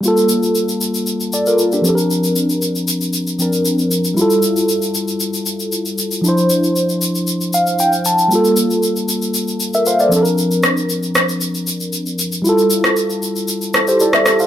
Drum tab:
SH |xxxxxxxxxxxxxxxx|xxxxxxxxxxxxxxxx|xxxxxxxxxxxxxxxx|xxxxxxxxxxxxxxxx|
SD |----------------|----------------|----------------|----------------|

SH |xxxxxxxxxxxxxxxx|xxxxxxxxxxxxxxxx|xxxxxxxxxxxxxxxx|
SD |----------------|--r---r---------|---r------r--rr-|